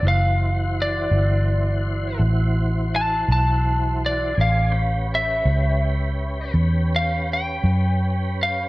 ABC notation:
X:1
M:12/8
L:1/8
Q:3/8=55
K:Ador
V:1 name="Lead electric guitar"
=f2 d4 z2 a a2 d | =f2 e4 z f g3 f |]
V:2 name="Tonewheel organ"
[E,Fc]12 | [D^Gc] [^C=GB]8- [CGB]3 |]
V:3 name="Fingered electric bass" clef=bass
F,,,3 G,,,3 A,,,3 B,,,3 | A,,,3 ^C,,3 E,,3 F,,3 |]